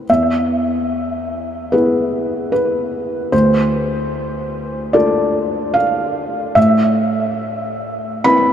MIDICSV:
0, 0, Header, 1, 2, 480
1, 0, Start_track
1, 0, Key_signature, 0, "minor"
1, 0, Tempo, 809717
1, 50, Time_signature, 4, 2, 24, 8
1, 3889, Tempo, 843882
1, 5009, End_track
2, 0, Start_track
2, 0, Title_t, "Felt piano"
2, 0, Program_c, 0, 0
2, 0, Control_c, 0, 64, 127
2, 0, Note_on_c, 0, 60, 33
2, 0, Note_on_c, 0, 64, 33
2, 0, Note_on_c, 0, 71, 54
2, 56, Note_on_c, 0, 40, 46
2, 57, Note_on_c, 0, 76, 67
2, 59, Control_c, 0, 64, 0
2, 60, Note_off_c, 0, 71, 0
2, 63, Note_off_c, 0, 60, 0
2, 65, Note_off_c, 0, 64, 0
2, 171, Control_c, 0, 64, 127
2, 1020, Note_on_c, 0, 71, 66
2, 1023, Note_off_c, 0, 76, 0
2, 1027, Note_on_c, 0, 68, 37
2, 1029, Note_on_c, 0, 59, 37
2, 1029, Note_on_c, 0, 64, 35
2, 1485, Note_off_c, 0, 71, 0
2, 1494, Note_on_c, 0, 71, 65
2, 1950, Note_off_c, 0, 40, 0
2, 1951, Note_off_c, 0, 68, 0
2, 1952, Note_off_c, 0, 59, 0
2, 1952, Note_off_c, 0, 64, 0
2, 1970, Note_on_c, 0, 72, 68
2, 1971, Note_off_c, 0, 71, 0
2, 1971, Note_on_c, 0, 38, 52
2, 1982, Control_c, 0, 64, 0
2, 2084, Control_c, 0, 64, 127
2, 2924, Note_on_c, 0, 74, 72
2, 2929, Note_on_c, 0, 62, 39
2, 2929, Note_on_c, 0, 65, 42
2, 2930, Note_off_c, 0, 72, 0
2, 2932, Note_on_c, 0, 69, 47
2, 3401, Note_on_c, 0, 77, 73
2, 3406, Note_off_c, 0, 74, 0
2, 3866, Note_off_c, 0, 62, 0
2, 3866, Note_off_c, 0, 65, 0
2, 3867, Note_off_c, 0, 38, 0
2, 3867, Note_off_c, 0, 69, 0
2, 3884, Note_on_c, 0, 76, 82
2, 3886, Note_off_c, 0, 77, 0
2, 3888, Note_on_c, 0, 45, 55
2, 3901, Control_c, 0, 64, 0
2, 4001, Control_c, 0, 64, 127
2, 4847, Note_on_c, 0, 83, 99
2, 4848, Note_on_c, 0, 60, 46
2, 4851, Note_off_c, 0, 76, 0
2, 4851, Note_on_c, 0, 64, 46
2, 4855, Note_on_c, 0, 71, 48
2, 5009, Note_off_c, 0, 45, 0
2, 5009, Note_off_c, 0, 60, 0
2, 5009, Note_off_c, 0, 64, 0
2, 5009, Note_off_c, 0, 71, 0
2, 5009, Note_off_c, 0, 83, 0
2, 5009, End_track
0, 0, End_of_file